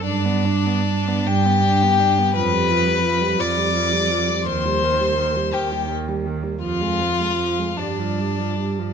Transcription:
<<
  \new Staff \with { instrumentName = "Violin" } { \time 6/8 \key g \phrygian \tempo 4. = 56 d''4. g''4. | b''4. d'''4. | c'''4. g''8 r4 | f''4. d''4. | }
  \new Staff \with { instrumentName = "Violin" } { \time 6/8 \key g \phrygian d'4. g'4. | b'4. d''4. | c''4. g'8 r4 | f'4. d'4. | }
  \new Staff \with { instrumentName = "Viola" } { \clef bass \time 6/8 \key g \phrygian d'16 b16 d'16 b16 d'16 b16 d'16 b16 d'16 b16 d'16 b16 | f16 g16 f16 g16 f16 g16 f16 g16 f16 g16 f16 g16 | ees16 g16 ees16 g16 ees16 g16 ees16 g16 ees16 g16 ees16 g16 | f16 aes16 f16 aes16 f16 aes16 g16 f16 g16 f16 g16 f16 | }
  \new Staff \with { instrumentName = "Cello" } { \clef bass \time 6/8 \key g \phrygian g,4. g,4. | f,4. f,4. | ees,4. ees,4. | f,4. g,4. | }
>>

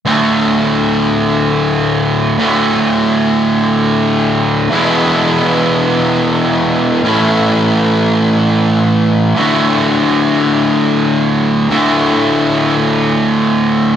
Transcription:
\new Staff \with { instrumentName = "Distorted electric guitar" } { \clef bass \time 6/8 \key d \lydian \tempo 4. = 52 <d, a, d a fis'>2. | <d, a, d a fis'>2. | <e, b, e gis b e'>2. | <a, e a cis' e' a'>2. |
<d, a, d a fis'>2. | <d, a, d a fis'>2. | }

